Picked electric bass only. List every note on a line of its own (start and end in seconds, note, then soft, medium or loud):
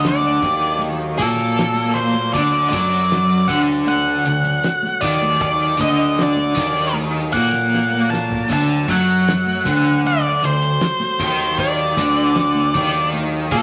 0.00 0.38 D2 medium
0.42 1.15 D#2 medium
1.19 2.30 A#2 medium
2.35 2.70 D2 medium
2.73 3.46 F#2 medium
3.50 4.23 D2 medium
4.27 4.63 D2 medium
5.02 5.76 D#2 medium
5.80 6.53 D2 medium
6.57 7.30 D#2 loud
7.35 8.46 A#2 medium
8.50 8.86 D2 medium
8.88 9.62 F#2 medium
9.66 10.39 D2 medium
10.43 10.79 D2 medium
11.19 11.93 D#2 medium
11.97 12.70 D2 medium
12.75 13.48 D#2 loud
13.52 13.62 A#2 medium